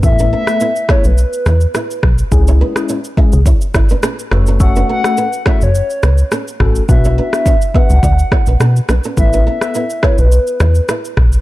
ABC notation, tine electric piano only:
X:1
M:4/4
L:1/16
Q:"Swing 16ths" 1/4=105
K:A
V:1 name="Tine electric piano"
[A,B,EA]3 [A,B,EA] z2 [A,B,EA]2 z8 | [G,CEG]3 [G,CEG] z2 [G,CEG]2 z6 [A,CFA]2 | [A,CFA]3 [A,CFA] z2 [A,CFA]2 z6 [A,CFA]2 | [B,DFB]3 [B,DFB] z2 [B,DFB]2 z8 |
[B,EAB]3 [B,EAB] z2 [B,EAB]2 z8 |]